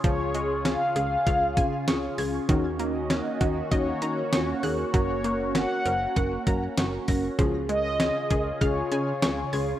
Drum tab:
HH |xxxxxxxo|xxxxxxxo|xxxxxxxo|xxxxxxxo|
SD |--o---o-|--o---o-|--o---o-|--o---o-|
BD |o---oo--|o--oo---|o---oo-o|o--oo---|